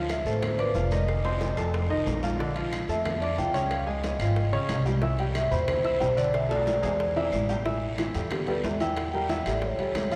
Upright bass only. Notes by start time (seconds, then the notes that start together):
Already playing: D2
0.25 A1
0.75 F1
1.57 F2
1.90 C2
2.06 A#1
2.88 F2
3.38 C#2
4.19 G#1
4.52 A#1
4.69 C2
5.52 E2
6.01 B1
6.84 E2
7.32 A1
8.15 E2
8.64 E2
9.46 A1
9.79 C#2
9.95 D2